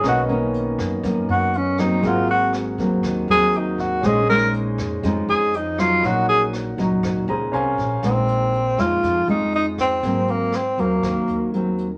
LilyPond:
<<
  \new Staff \with { instrumentName = "Grand piano" } { \time 4/4 \key bes \minor \tempo 4 = 120 << { r1 | r1 | r1 | r2 r8 bes''8 f''4 |
r1 | r1 | } \\ { <b cis' ais' dis''>1 | <c' aes' bes' ges''>1 | <des' aes' c'' ees''>1 | <ees' bes' des'' ges''>2. <des' bes' c'' aes''>4 |
r1 | r1 | } >> }
  \new Staff \with { instrumentName = "Tenor saxophone" } { \time 4/4 \key bes \minor fis'8 r2 fis'8 cis'8 dis'8 | f'8 ges'8 r4. aes'8 ees'8 ges'8 | aes'8 bes'8 r4. aes'8 ees'8 f'8 | ges'8 aes'8 r2. |
c'4. f'4 ees'8 ees'8 c'8~ | c'8 bes8 c'8 bes4. r4 | }
  \new Staff \with { instrumentName = "Nylon-string guitar" } { \time 4/4 \key bes \minor << { <dis ais cis'>8 <dis ais cis'>4. <dis ais cis'>4 r8 <fis ais c'>8~ | <fis ais c'>4. <ges bes c'>4 <ges bes c'>4. | <aes des' ees'>8 <aes des' ees'>4. <aes des' ees'>4 r8 <ges des' ees'>8~ | <ges des' ees'>4. <ges des' ees'>4 <des' aes' c''>4. |
<aes ees'>4 r8 <aes des' ees'>4 <aes des' ees'>4. | <ges bes c'>4 r8 <ges bes c'>4. <ges bes c'>8 r8 | } \\ { b,2 fis,2 | aes,2 ees2 | bes,2 f2 | bes,2 bes,4 r4 |
bes,2 f2 | aes,2 ees2 | } >> }
  \new Staff \with { instrumentName = "Upright bass" } { \clef bass \time 4/4 \key bes \minor b,,4. fis,8 fis,8 fis,4. | aes,,4. ees,8 ees,8 ees,4. | bes,,4. f,8 f,8 f,4. | bes,,4. des,8 des,8 des,8 c,8 bes,,8 |
bes,,4. f,8 f,8 f,4. | aes,,4. ees,8 ees,8 ees,4. | }
  \new DrumStaff \with { instrumentName = "Drums" } \drummode { \time 4/4 <hh bd ss>8 hh8 hh8 <hh bd ss>8 <hh bd>8 hh8 hh8 <hh ss>8 | <hh bd>8 hh8 <hh ss>8 <hh bd>8 <hh bd ss>8 hh8 hh8 <hh bd>8 | <hh bd ss>8 hh8 hh8 <hh bd ss>8 <hh bd>8 hh8 hh8 <hh ss>8 | <hh bd>8 hh8 <hh ss>8 <hh bd>8 <hh bd ss>8 hh8 hh8 <hh bd>8 |
<hh bd ss>8 hh8 hh8 <hh ss>8 <hh bd>8 hh8 hh8 <hh bd ss>8 | <hh bd>8 hh8 <hh ss>8 hh8 <hh bd ss>8 hh8 hh8 hh8 | }
>>